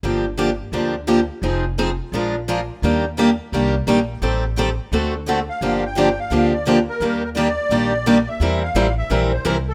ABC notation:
X:1
M:4/4
L:1/16
Q:"Swing" 1/4=172
K:Gm
V:1 name="Accordion"
z16 | z16 | z16 | z12 z2 f2- |
f2 g4 f4 d2 c2 B2- | B2 B2 d8- d2 =e2- | =e2 f4 e4 c2 B2 A2 |]
V:2 name="Steel-string acoustic guitar"
[D,F,B,DG]2 z2 [D,F,B,DG] z3 [D,F,B,DG]2 z2 [D,F,B,DG] z3 | [F,CE_A]2 z2 [F,CEA] z3 [F,_A,DFB]2 z2 [F,A,DFB] z3 | [E,G,B,DG]2 z2 [E,G,B,DG] z3 [E,G,B,DG]2 z2 [E,G,B,DG] z3 | [E,G,CGA]2 z2 [E,G,CGA] z3 [D,A,C^FA]2 z2 [D,A,CFA] z3 |
[D,F,B,DG]2 z2 [D,F,B,DG] z3 [D,F,B,DG]2 z2 [D,F,B,DG] z3 | [E,G,B,DG]2 z2 [E,G,B,DG] z3 [E,G,B,DG]2 z2 [E,G,B,DG] z3 | [=E,G,C=EB]2 z2 [E,G,CEB] z3 [E,G,CEB]2 z2 [E,G,CEB] z3 |]
V:3 name="Steel-string acoustic guitar"
[D,F,B,DG]2 z2 [D,F,B,DG] z3 [D,F,B,DG]2 z2 [D,F,B,DG] z3 | [F,CE_A]2 z2 [F,CEA] z3 [F,_A,DFB]2 z2 [F,A,DFB] z3 | [E,G,B,DG]2 z2 [E,G,B,DG] z3 [E,G,B,DG]2 z2 [E,G,B,DG] z3 | [E,G,CGA]2 z2 [E,G,CGA] z3 [D,A,C^FA]2 z2 [D,A,CFA] z3 |
[D,F,B,DG]2 z2 [D,F,B,DG] z3 [D,F,B,DG]2 z2 [D,F,B,DG] z3 | [E,G,B,DG]2 z2 [E,G,B,DG] z3 [E,G,B,DG]2 z2 [E,G,B,DG] z3 | [=E,G,C=EB]2 z2 [E,G,CEB] z3 [E,G,CEB]2 z2 [E,G,CEB] z3 |]
V:4 name="Upright bass" clef=bass
G,,,8 D,,8 | F,,,8 B,,,8 | E,,8 C,,4 B,,,4 | A,,,8 D,,8 |
G,,,8 D,,8 | E,,8 B,,,8 | =E,,4 A,,,4 B,,,4 C,,4 |]